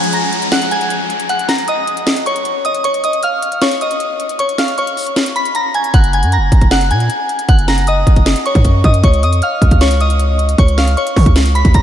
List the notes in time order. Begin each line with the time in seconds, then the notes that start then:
Already playing: downlifter
0.03 closed hi-hat
0.13 A#5 A#6, closed hi-hat
0.33 closed hi-hat
0.42 closed hi-hat
0.52 F#5 F#6, snare, closed hi-hat
0.62 closed hi-hat
0.71 G#5 G#6, closed hi-hat
0.81 closed hi-hat
0.90 closed hi-hat
1.10 closed hi-hat
1.20 closed hi-hat
1.29 F#5 F#6, closed hi-hat
1.39 closed hi-hat
1.48 A#5 A#6, snare, closed hi-hat
1.58 closed hi-hat
1.68 D#5 D#6, closed hi-hat
1.88 closed hi-hat
1.97 closed hi-hat
2.07 snare, closed hi-hat
2.17 closed hi-hat
2.26 C#5 C#6, closed hi-hat
2.36 closed hi-hat
2.45 closed hi-hat
2.65 D#5 D#6, closed hi-hat
2.74 closed hi-hat
2.84 C#5 C#6, closed hi-hat
2.94 closed hi-hat
3.04 D#5 D#6, closed hi-hat
3.13 closed hi-hat
3.23 F5 F6, closed hi-hat
3.42 closed hi-hat
3.52 closed hi-hat
3.62 C#5 C#6, snare, closed hi-hat
3.71 closed hi-hat
3.81 D#5 D#6, closed hi-hat
3.91 closed hi-hat
4.00 closed hi-hat
4.20 closed hi-hat
4.29 closed hi-hat
4.39 C#5 C#6, closed hi-hat
4.49 closed hi-hat
4.58 F5 F6, snare, closed hi-hat
4.68 closed hi-hat
4.78 C#5 C#6, closed hi-hat
4.87 closed hi-hat
4.97 open hi-hat
5.07 closed hi-hat
5.16 snare, closed hi-hat
5.26 closed hi-hat
5.36 B5 B6, closed hi-hat
5.45 closed hi-hat
5.55 A#5 A#6, closed hi-hat
5.74 G#5 G#6, closed hi-hat
5.84 closed hi-hat
5.94 F#1 F#5 F#6, kick, closed hi-hat
6.04 closed hi-hat
6.13 G#5 G#6, closed hi-hat
6.23 F#2, closed hi-hat
6.32 A#5 A#6, closed hi-hat
6.37 F#1
6.52 F#1, kick, closed hi-hat
6.61 kick, closed hi-hat
6.71 F#5 F#6, snare, closed hi-hat
6.81 closed hi-hat
6.91 A#2 G#5 G#6, closed hi-hat
7.00 closed hi-hat
7.10 closed hi-hat
7.29 closed hi-hat
7.39 closed hi-hat
7.49 F#1 F#5 F#6, kick, closed hi-hat
7.59 closed hi-hat
7.68 A#5 A#6, snare, closed hi-hat
7.78 closed hi-hat
7.87 D#5 D#6, closed hi-hat
8.07 F#1, kick, closed hi-hat
8.16 kick, closed hi-hat
8.26 snare, closed hi-hat
8.36 closed hi-hat
8.46 C#5 C#6, closed hi-hat
8.55 F#2, kick, closed hi-hat
8.65 kick, closed hi-hat
8.84 F#2 D#5 D#6, kick, closed hi-hat
8.94 closed hi-hat
9.04 C#2 C#5 C#6, kick, closed hi-hat
9.13 closed hi-hat
9.23 F2 D#5 D#6, closed hi-hat
9.33 closed hi-hat
9.42 F5 F6, closed hi-hat
9.62 B1, kick, closed hi-hat
9.71 C#2, kick, closed hi-hat
9.81 C#5 C#6, snare, closed hi-hat
9.91 closed hi-hat
10.00 D#5 D#6, closed hi-hat
10.10 closed hi-hat
10.20 closed hi-hat
10.39 closed hi-hat
10.49 closed hi-hat
10.58 C#2 C#5 C#6, kick, closed hi-hat
10.68 closed hi-hat
10.78 F5 F6, snare, closed hi-hat
10.87 closed hi-hat
10.97 C#5 C#6, closed hi-hat
11.07 closed hi-hat
11.16 C#3, kick, open hi-hat
11.26 C#2, kick, closed hi-hat
11.36 snare, closed hi-hat
11.46 closed hi-hat
11.55 B5 B6, closed hi-hat
11.65 C#2, kick, closed hi-hat
11.74 C#2 A#5 A#6, kick, closed hi-hat